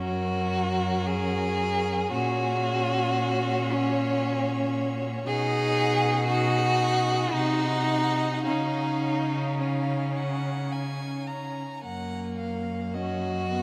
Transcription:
0.00 2.09 F#2 medium
0.00 2.09 C#4 medium
0.00 1.08 F#4 medium
0.00 2.09 A#4 medium
1.06 2.11 G#4 loud
2.12 5.23 A#2 medium
2.12 5.23 C#4 medium
2.12 3.74 F#4 loud
2.12 5.30 C#5 medium
3.73 4.75 C#4 medium
5.27 7.30 B2 medium
5.27 6.26 D#4 medium
5.27 6.23 G#4 loud
5.27 6.28 F#5 medium
6.27 7.32 D#4 medium
6.27 7.34 F#4 loud
6.27 7.32 F#5 medium
7.33 8.48 C3 medium
7.33 8.45 D#4 loud
7.33 8.43 D#4 medium
7.33 8.44 F#5 medium
8.46 11.63 C#3 medium
8.46 9.58 C#4 medium
8.46 9.62 D#4 medium
8.46 9.58 F5 medium
9.60 11.59 C#4 medium
9.60 10.72 C#4 medium
9.60 10.18 F5 medium
10.16 10.73 F#5 medium
10.72 11.28 G#5 medium
11.27 11.83 A#5 medium
11.84 13.62 F#2 medium
11.84 12.96 A#3 medium
11.84 12.35 F#5 medium
12.39 12.96 F5 medium
12.94 13.50 C#4 medium
12.94 13.62 F#4 medium
12.94 13.62 D#5 medium
13.51 13.62 B3 medium

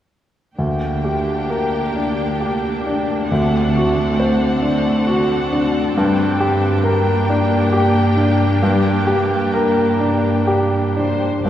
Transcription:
0.57 5.89 D2 soft
0.57 3.27 D2 soft
0.57 3.26 A#3 soft
0.57 5.89 D4 soft
0.57 3.26 G4 soft
0.57 3.26 G5 soft
1.04 1.77 G4 soft
1.50 2.22 A#4 soft
1.96 2.68 D4 soft
2.41 3.13 G4 soft
2.86 3.31 D4 soft
3.29 5.90 D2 soft
3.29 6.82 C4 soft
3.29 6.79 A4 soft
3.29 5.90 F#5 soft
3.76 4.45 F#4 soft
4.20 4.88 C5 soft
4.62 5.31 D4 soft
5.07 5.77 F#4 soft
5.52 5.95 D4 soft
5.93 11.18 G2 soft
5.93 11.18 D4 soft
5.93 11.22 G5 soft
5.97 8.58 G2 soft
6.40 7.10 G4 soft
6.82 11.22 A#3 soft
6.82 11.23 G4 soft
6.82 7.54 A#4 soft
7.30 7.99 D4 soft
7.72 8.43 G4 soft
8.17 8.89 D4 soft
8.63 11.40 G2 soft
9.07 9.80 G4 soft
9.54 10.28 A#4 soft
10.00 10.76 D4 soft
10.47 11.25 G4 soft
10.96 11.43 D4 soft
10.96 11.40 C5 soft
11.43 11.50 G1 soft
11.43 11.50 G2 soft
11.43 11.50 D5 soft

